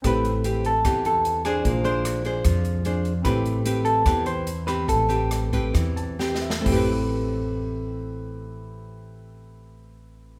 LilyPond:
<<
  \new Staff \with { instrumentName = "Hollow-body jazz guitar" } { \time 4/4 \key a \minor \tempo 4 = 142 b'4. a'4 a'4 gis'8~ | gis'8 c''2. r8 | b'4. a'4 c''4 b'8 | a'2. r4 |
r1 | r1 | }
  \new Staff \with { instrumentName = "Grand piano" } { \time 4/4 \key a \minor << { r1 | r1 | r1 | r2 r8 a''8 g''8 e''8 |
r1 | r1 | } \\ { <c' e' g' b'>1 | <d' f' aes' c''>1 | <c' e' g' b''>1~ | <c' e' g' b''>1 |
<c' e' g' b'>1~ | <c' e' g' b'>1 | } >> }
  \new Staff \with { instrumentName = "Nylon-string guitar" } { \time 4/4 \key a \minor << { <c' g' b'>8 r8 <c' g' b'>8 r8 <c' g' b'>4. <d' gis' c''>8~ | <d' gis' c''>8 <d' aes' c''>4 <d' aes' c''>4. <d' aes' c''>8 r8 | <c' g' b'>4 <c' g' b'>4 <c' g' b'>4 r8 <c' g' b'>8~ | <c' g' b'>8 <c' g' b'>4 <c' g' b'>4. <c' g' b'>8 r8 |
<a c' g' b'>1~ | <a c' g' b'>1 | } \\ { a2 e2 | bes2 f2 | a2 e2 | a2 e2 |
r1 | r1 | } >> }
  \new Staff \with { instrumentName = "Upright bass" } { \clef bass \time 4/4 \key a \minor a,,2 e,2 | bes,,2 f,2 | a,,2 e,2 | a,,2 e,2 |
a,,1~ | a,,1 | }
  \new DrumStaff \with { instrumentName = "Drums" } \drummode { \time 4/4 <hh bd ss>8 hh8 hh8 hh8 <hh bd ss>8 hh8 hh8 <hh ss>8 | <hh bd>8 hh8 <hh ss>8 hh8 <hh bd ss>8 hh8 hh8 hh8 | <hh bd ss>8 hh8 hh8 hh8 <hh bd ss>8 hh8 hh8 <hh ss>8 | <hh bd>8 hh8 <hh ss>8 <hh bd>8 <hh bd ss>8 hh8 \tuplet 3/2 { sn8 sn8 sn8 } |
<hho bd tomfh>4 r4 r4 r4 | r4 r4 r4 r4 | }
>>